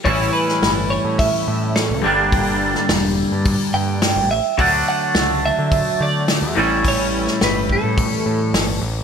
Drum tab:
HH |o---o---o---o---|o---o---o---o---|o---o---o---o---|o---o---o---o---|
SD |---oo-------o---|---oo-------o---|----o-------o---|---oo-------o---|
BD |o-------o-------|o-------o-------|o-------o-------|o-----o-o-------|